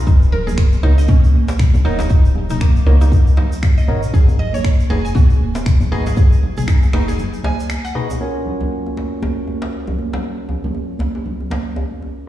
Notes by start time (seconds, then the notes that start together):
0.07 D#1 D#4, kick, djembe tone, shaker
0.22 shaker
0.32 A#4, low conga
0.47 G#4, high conga, djembe tone, low conga, shaker
0.58 finger snap, kick, shaker
0.72 djembe tone, shaker
0.83 C#2 D#4 F#4 A#4 C#5 D#5, djembe slap, high conga
0.98 D#5, shaker
1.08 C#4, kick, mid tom, djembe slap, high conga, djembe tone, djembe bass, shaker
1.24 shaker
1.34 A#1, djembe tone, high conga
1.48 djembe slap, shaker
1.59 finger snap, kick, mid tom, shaker
1.74 djembe tone, djembe bass, low conga, shaker
1.85 D#1 D#4 F#4 A#4 C#5 D#5, high conga
1.99 D#4, djembe slap, djembe tone, low conga, shaker
2.10 D#4, kick, shaker
2.25 shaker
2.35 djembe tone, low conga
2.50 D#4, mid tom, high conga, low conga, shaker
2.61 A#3, finger snap, kick, djembe tone, shaker
2.76 shaker
2.86 C#2 A#3 D#4 F#4 A#4 C#5 D#5, djembe slap, high conga, djembe bass
3.01 D#4, djembe tone, shaker
3.12 kick, low conga, shaker
3.27 djembe tone, shaker
3.37 D#4, djembe slap, high conga, low conga
3.52 shaker
3.63 finger snap, kick, djembe tone, shaker
3.77 D#5, high conga, shaker
3.88 G#1 D#4 F#4 A#4 C#5 D#5, mid tom, djembe tone
4.03 shaker
4.14 G#1 G#4, kick, shaker
4.28 djembe tone, shaker
4.39 D#5, low conga
4.53 C#5, high conga, djembe tone, low conga, shaker
4.64 finger snap, kick, shaker
4.80 shaker
4.90 F#1 D#4 F#4 G#4 B4 D#5, djembe slap, djembe tone, high conga
5.05 G#5, shaker
5.15 F#4, kick, mid tom, djembe slap, djembe tone, high conga, djembe bass, shaker
5.30 shaker
5.40 D#1, high conga
5.55 djembe slap, djembe tone, shaker
5.66 finger snap, kick, mid tom, shaker
5.80 djembe tone, djembe bass, low conga, shaker
5.92 G#1 D#4 F#4 G#4 B4 D#5, high conga
6.06 G#4, djembe slap, low conga, shaker
6.17 G#4, kick, djembe tone, shaker
6.32 shaker
6.43 djembe tone, low conga
6.57 G#4, mid tom, high conga, low conga, shaker
6.68 D#4, finger snap, kick, shaker
6.83 djembe tone, shaker
6.93 F#1 D#4 F#4 G#4 B4 D#5, finger snap, djembe slap, high conga, djembe bass
7.08 G#4, djembe tone, shaker
7.19 low conga, shaker
7.33 shaker
7.43 G#5, djembe slap, high conga, djembe tone, low conga
7.60 shaker
7.69 finger snap, djembe tone, shaker
7.85 F#5, high conga, shaker
7.95 D#4 F#4 G#4 B4 D#5, mid tom
8.10 djembe tone, shaker
8.21 C#4 F4 F#4 A#4 C#5, djembe tone
8.46 low conga
8.60 high conga, djembe tone, low conga
8.86 djembe tone
8.97 djembe slap, high conga
9.22 djembe slap, high conga, djembe tone, djembe bass
9.47 djembe tone, high conga
9.62 djembe slap
9.87 djembe tone, low conga, djembe bass
9.99 high conga
10.13 djembe slap, djembe tone, low conga
10.49 djembe tone, low conga
10.64 high conga, low conga
10.75 djembe tone
10.99 djembe slap, high conga, djembe bass
11.15 djembe tone
11.26 low conga
11.40 djembe tone
11.50 djembe slap, high conga, low conga
11.76 djembe tone
11.91 high conga
12.02 djembe tone